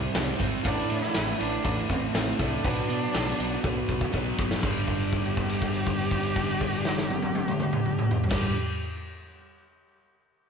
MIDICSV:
0, 0, Header, 1, 5, 480
1, 0, Start_track
1, 0, Key_signature, 1, "major"
1, 0, Tempo, 497512
1, 621, Time_signature, 4, 2, 24, 8
1, 10128, End_track
2, 0, Start_track
2, 0, Title_t, "Cello"
2, 0, Program_c, 0, 42
2, 0, Note_on_c, 0, 55, 83
2, 346, Note_off_c, 0, 55, 0
2, 629, Note_on_c, 0, 62, 110
2, 982, Note_on_c, 0, 64, 111
2, 997, Note_off_c, 0, 62, 0
2, 1337, Note_off_c, 0, 64, 0
2, 1343, Note_on_c, 0, 62, 105
2, 1793, Note_off_c, 0, 62, 0
2, 1841, Note_on_c, 0, 60, 89
2, 2059, Note_off_c, 0, 60, 0
2, 2076, Note_on_c, 0, 60, 98
2, 2255, Note_off_c, 0, 60, 0
2, 2255, Note_on_c, 0, 60, 69
2, 2329, Note_on_c, 0, 62, 106
2, 2343, Note_off_c, 0, 60, 0
2, 4002, Note_off_c, 0, 62, 0
2, 4471, Note_on_c, 0, 67, 100
2, 7919, Note_off_c, 0, 67, 0
2, 8019, Note_on_c, 0, 67, 89
2, 8218, Note_off_c, 0, 67, 0
2, 10128, End_track
3, 0, Start_track
3, 0, Title_t, "Distorted electric guitar"
3, 0, Program_c, 1, 30
3, 0, Note_on_c, 1, 48, 113
3, 0, Note_on_c, 1, 55, 110
3, 0, Note_on_c, 1, 60, 115
3, 122, Note_off_c, 1, 48, 0
3, 123, Note_off_c, 1, 55, 0
3, 131, Note_off_c, 1, 60, 0
3, 134, Note_on_c, 1, 48, 76
3, 134, Note_on_c, 1, 55, 94
3, 143, Note_on_c, 1, 60, 97
3, 353, Note_off_c, 1, 48, 0
3, 357, Note_off_c, 1, 55, 0
3, 364, Note_on_c, 1, 48, 88
3, 365, Note_off_c, 1, 60, 0
3, 369, Note_on_c, 1, 55, 92
3, 376, Note_on_c, 1, 60, 91
3, 599, Note_off_c, 1, 48, 0
3, 601, Note_off_c, 1, 55, 0
3, 605, Note_off_c, 1, 60, 0
3, 607, Note_on_c, 1, 45, 91
3, 612, Note_on_c, 1, 52, 112
3, 617, Note_on_c, 1, 57, 116
3, 1078, Note_off_c, 1, 45, 0
3, 1085, Note_off_c, 1, 52, 0
3, 1088, Note_off_c, 1, 57, 0
3, 1089, Note_on_c, 1, 45, 81
3, 1096, Note_on_c, 1, 52, 93
3, 1099, Note_on_c, 1, 57, 93
3, 1327, Note_off_c, 1, 45, 0
3, 1330, Note_off_c, 1, 52, 0
3, 1336, Note_off_c, 1, 57, 0
3, 1338, Note_on_c, 1, 45, 96
3, 1341, Note_on_c, 1, 52, 95
3, 1348, Note_on_c, 1, 57, 96
3, 1570, Note_off_c, 1, 45, 0
3, 1575, Note_off_c, 1, 52, 0
3, 1577, Note_off_c, 1, 57, 0
3, 1582, Note_on_c, 1, 45, 94
3, 1587, Note_on_c, 1, 52, 113
3, 1589, Note_on_c, 1, 57, 107
3, 2049, Note_off_c, 1, 45, 0
3, 2052, Note_off_c, 1, 52, 0
3, 2056, Note_off_c, 1, 57, 0
3, 2060, Note_on_c, 1, 45, 87
3, 2063, Note_on_c, 1, 52, 98
3, 2067, Note_on_c, 1, 57, 94
3, 2288, Note_off_c, 1, 45, 0
3, 2294, Note_off_c, 1, 52, 0
3, 2299, Note_on_c, 1, 45, 86
3, 2302, Note_off_c, 1, 57, 0
3, 2305, Note_on_c, 1, 52, 100
3, 2313, Note_on_c, 1, 57, 85
3, 2530, Note_off_c, 1, 45, 0
3, 2533, Note_off_c, 1, 52, 0
3, 2537, Note_off_c, 1, 57, 0
3, 2549, Note_on_c, 1, 47, 110
3, 2556, Note_on_c, 1, 54, 111
3, 2556, Note_on_c, 1, 59, 123
3, 3018, Note_off_c, 1, 47, 0
3, 3022, Note_off_c, 1, 59, 0
3, 3023, Note_off_c, 1, 54, 0
3, 3029, Note_on_c, 1, 47, 80
3, 3033, Note_on_c, 1, 59, 94
3, 3035, Note_on_c, 1, 54, 94
3, 3262, Note_off_c, 1, 47, 0
3, 3265, Note_off_c, 1, 54, 0
3, 3271, Note_off_c, 1, 59, 0
3, 3273, Note_on_c, 1, 47, 89
3, 3276, Note_on_c, 1, 54, 103
3, 3283, Note_on_c, 1, 59, 91
3, 3492, Note_off_c, 1, 47, 0
3, 3497, Note_off_c, 1, 54, 0
3, 3503, Note_off_c, 1, 59, 0
3, 3503, Note_on_c, 1, 47, 92
3, 3508, Note_on_c, 1, 54, 110
3, 3515, Note_on_c, 1, 59, 104
3, 3966, Note_off_c, 1, 47, 0
3, 3972, Note_off_c, 1, 54, 0
3, 3975, Note_off_c, 1, 59, 0
3, 3977, Note_on_c, 1, 47, 77
3, 3984, Note_on_c, 1, 54, 88
3, 3987, Note_on_c, 1, 59, 99
3, 4211, Note_off_c, 1, 47, 0
3, 4218, Note_off_c, 1, 54, 0
3, 4222, Note_on_c, 1, 47, 85
3, 4223, Note_off_c, 1, 59, 0
3, 4230, Note_on_c, 1, 54, 88
3, 4234, Note_on_c, 1, 59, 94
3, 4451, Note_on_c, 1, 43, 101
3, 4453, Note_off_c, 1, 47, 0
3, 4456, Note_off_c, 1, 54, 0
3, 4458, Note_off_c, 1, 59, 0
3, 4473, Note_on_c, 1, 50, 110
3, 4493, Note_on_c, 1, 55, 115
3, 7948, Note_off_c, 1, 43, 0
3, 7959, Note_off_c, 1, 50, 0
3, 7969, Note_off_c, 1, 55, 0
3, 8001, Note_on_c, 1, 43, 95
3, 8021, Note_on_c, 1, 50, 101
3, 8041, Note_on_c, 1, 55, 112
3, 8224, Note_off_c, 1, 43, 0
3, 8234, Note_off_c, 1, 50, 0
3, 8243, Note_off_c, 1, 55, 0
3, 10128, End_track
4, 0, Start_track
4, 0, Title_t, "Picked electric bass"
4, 0, Program_c, 2, 34
4, 151, Note_on_c, 2, 36, 99
4, 310, Note_off_c, 2, 36, 0
4, 386, Note_on_c, 2, 32, 92
4, 547, Note_off_c, 2, 32, 0
4, 629, Note_on_c, 2, 33, 92
4, 790, Note_off_c, 2, 33, 0
4, 879, Note_on_c, 2, 45, 88
4, 1037, Note_off_c, 2, 45, 0
4, 1123, Note_on_c, 2, 33, 105
4, 1280, Note_off_c, 2, 33, 0
4, 1357, Note_on_c, 2, 33, 87
4, 1516, Note_off_c, 2, 33, 0
4, 1593, Note_on_c, 2, 33, 100
4, 1754, Note_off_c, 2, 33, 0
4, 1831, Note_on_c, 2, 33, 85
4, 1993, Note_off_c, 2, 33, 0
4, 2075, Note_on_c, 2, 33, 98
4, 2236, Note_off_c, 2, 33, 0
4, 2314, Note_on_c, 2, 36, 87
4, 2475, Note_off_c, 2, 36, 0
4, 2558, Note_on_c, 2, 35, 97
4, 2718, Note_off_c, 2, 35, 0
4, 2791, Note_on_c, 2, 47, 92
4, 2954, Note_off_c, 2, 47, 0
4, 3034, Note_on_c, 2, 35, 89
4, 3195, Note_off_c, 2, 35, 0
4, 3273, Note_on_c, 2, 35, 84
4, 3435, Note_off_c, 2, 35, 0
4, 3516, Note_on_c, 2, 35, 99
4, 3677, Note_off_c, 2, 35, 0
4, 3752, Note_on_c, 2, 35, 93
4, 3914, Note_off_c, 2, 35, 0
4, 3994, Note_on_c, 2, 35, 92
4, 4155, Note_off_c, 2, 35, 0
4, 4235, Note_on_c, 2, 30, 81
4, 4396, Note_off_c, 2, 30, 0
4, 4472, Note_on_c, 2, 31, 85
4, 7920, Note_off_c, 2, 31, 0
4, 8015, Note_on_c, 2, 31, 101
4, 8216, Note_off_c, 2, 31, 0
4, 10128, End_track
5, 0, Start_track
5, 0, Title_t, "Drums"
5, 144, Note_on_c, 9, 38, 122
5, 144, Note_on_c, 9, 51, 95
5, 241, Note_off_c, 9, 38, 0
5, 241, Note_off_c, 9, 51, 0
5, 384, Note_on_c, 9, 36, 80
5, 390, Note_on_c, 9, 51, 73
5, 481, Note_off_c, 9, 36, 0
5, 487, Note_off_c, 9, 51, 0
5, 625, Note_on_c, 9, 51, 102
5, 627, Note_on_c, 9, 36, 100
5, 722, Note_off_c, 9, 51, 0
5, 723, Note_off_c, 9, 36, 0
5, 866, Note_on_c, 9, 51, 78
5, 962, Note_off_c, 9, 51, 0
5, 995, Note_on_c, 9, 38, 32
5, 1091, Note_off_c, 9, 38, 0
5, 1105, Note_on_c, 9, 38, 110
5, 1105, Note_on_c, 9, 51, 96
5, 1201, Note_off_c, 9, 38, 0
5, 1201, Note_off_c, 9, 51, 0
5, 1357, Note_on_c, 9, 51, 82
5, 1453, Note_off_c, 9, 51, 0
5, 1590, Note_on_c, 9, 36, 81
5, 1594, Note_on_c, 9, 51, 102
5, 1686, Note_off_c, 9, 36, 0
5, 1690, Note_off_c, 9, 51, 0
5, 1831, Note_on_c, 9, 36, 89
5, 1840, Note_on_c, 9, 51, 77
5, 1927, Note_off_c, 9, 36, 0
5, 1936, Note_off_c, 9, 51, 0
5, 2073, Note_on_c, 9, 38, 119
5, 2073, Note_on_c, 9, 51, 101
5, 2169, Note_off_c, 9, 38, 0
5, 2169, Note_off_c, 9, 51, 0
5, 2309, Note_on_c, 9, 51, 79
5, 2310, Note_on_c, 9, 36, 80
5, 2406, Note_off_c, 9, 51, 0
5, 2407, Note_off_c, 9, 36, 0
5, 2552, Note_on_c, 9, 36, 109
5, 2559, Note_on_c, 9, 51, 107
5, 2648, Note_off_c, 9, 36, 0
5, 2655, Note_off_c, 9, 51, 0
5, 2797, Note_on_c, 9, 51, 80
5, 2893, Note_off_c, 9, 51, 0
5, 3035, Note_on_c, 9, 38, 112
5, 3035, Note_on_c, 9, 51, 103
5, 3131, Note_off_c, 9, 38, 0
5, 3131, Note_off_c, 9, 51, 0
5, 3279, Note_on_c, 9, 51, 82
5, 3375, Note_off_c, 9, 51, 0
5, 3512, Note_on_c, 9, 36, 97
5, 3609, Note_off_c, 9, 36, 0
5, 3751, Note_on_c, 9, 36, 80
5, 3848, Note_off_c, 9, 36, 0
5, 3871, Note_on_c, 9, 36, 80
5, 3967, Note_off_c, 9, 36, 0
5, 3992, Note_on_c, 9, 36, 85
5, 4088, Note_off_c, 9, 36, 0
5, 4232, Note_on_c, 9, 36, 95
5, 4328, Note_off_c, 9, 36, 0
5, 4352, Note_on_c, 9, 38, 99
5, 4448, Note_off_c, 9, 38, 0
5, 4468, Note_on_c, 9, 36, 105
5, 4470, Note_on_c, 9, 49, 83
5, 4564, Note_off_c, 9, 36, 0
5, 4566, Note_off_c, 9, 49, 0
5, 4703, Note_on_c, 9, 49, 46
5, 4706, Note_on_c, 9, 36, 65
5, 4800, Note_off_c, 9, 49, 0
5, 4802, Note_off_c, 9, 36, 0
5, 4826, Note_on_c, 9, 57, 44
5, 4922, Note_off_c, 9, 57, 0
5, 4946, Note_on_c, 9, 36, 60
5, 4949, Note_on_c, 9, 49, 47
5, 5043, Note_off_c, 9, 36, 0
5, 5046, Note_off_c, 9, 49, 0
5, 5069, Note_on_c, 9, 57, 42
5, 5166, Note_off_c, 9, 57, 0
5, 5182, Note_on_c, 9, 49, 50
5, 5184, Note_on_c, 9, 36, 66
5, 5279, Note_off_c, 9, 49, 0
5, 5280, Note_off_c, 9, 36, 0
5, 5302, Note_on_c, 9, 57, 50
5, 5398, Note_off_c, 9, 57, 0
5, 5421, Note_on_c, 9, 36, 64
5, 5421, Note_on_c, 9, 49, 50
5, 5517, Note_off_c, 9, 49, 0
5, 5518, Note_off_c, 9, 36, 0
5, 5537, Note_on_c, 9, 57, 52
5, 5633, Note_off_c, 9, 57, 0
5, 5661, Note_on_c, 9, 36, 69
5, 5662, Note_on_c, 9, 49, 52
5, 5757, Note_off_c, 9, 36, 0
5, 5758, Note_off_c, 9, 49, 0
5, 5774, Note_on_c, 9, 57, 52
5, 5870, Note_off_c, 9, 57, 0
5, 5888, Note_on_c, 9, 49, 52
5, 5899, Note_on_c, 9, 36, 64
5, 5985, Note_off_c, 9, 49, 0
5, 5995, Note_off_c, 9, 36, 0
5, 6012, Note_on_c, 9, 57, 55
5, 6109, Note_off_c, 9, 57, 0
5, 6133, Note_on_c, 9, 49, 51
5, 6138, Note_on_c, 9, 36, 64
5, 6229, Note_off_c, 9, 49, 0
5, 6235, Note_off_c, 9, 36, 0
5, 6251, Note_on_c, 9, 57, 55
5, 6348, Note_off_c, 9, 57, 0
5, 6373, Note_on_c, 9, 49, 56
5, 6378, Note_on_c, 9, 36, 61
5, 6470, Note_off_c, 9, 49, 0
5, 6475, Note_off_c, 9, 36, 0
5, 6492, Note_on_c, 9, 57, 49
5, 6588, Note_off_c, 9, 57, 0
5, 6611, Note_on_c, 9, 38, 91
5, 6708, Note_off_c, 9, 38, 0
5, 6735, Note_on_c, 9, 38, 92
5, 6832, Note_off_c, 9, 38, 0
5, 6854, Note_on_c, 9, 48, 91
5, 6951, Note_off_c, 9, 48, 0
5, 6968, Note_on_c, 9, 48, 95
5, 7064, Note_off_c, 9, 48, 0
5, 7092, Note_on_c, 9, 48, 104
5, 7189, Note_off_c, 9, 48, 0
5, 7218, Note_on_c, 9, 47, 99
5, 7314, Note_off_c, 9, 47, 0
5, 7331, Note_on_c, 9, 47, 98
5, 7428, Note_off_c, 9, 47, 0
5, 7456, Note_on_c, 9, 45, 112
5, 7553, Note_off_c, 9, 45, 0
5, 7582, Note_on_c, 9, 45, 96
5, 7678, Note_off_c, 9, 45, 0
5, 7706, Note_on_c, 9, 45, 106
5, 7802, Note_off_c, 9, 45, 0
5, 7823, Note_on_c, 9, 43, 99
5, 7920, Note_off_c, 9, 43, 0
5, 7946, Note_on_c, 9, 43, 103
5, 8015, Note_on_c, 9, 36, 124
5, 8019, Note_on_c, 9, 38, 102
5, 8019, Note_on_c, 9, 49, 106
5, 8043, Note_off_c, 9, 43, 0
5, 8112, Note_off_c, 9, 36, 0
5, 8115, Note_off_c, 9, 38, 0
5, 8115, Note_off_c, 9, 49, 0
5, 10128, End_track
0, 0, End_of_file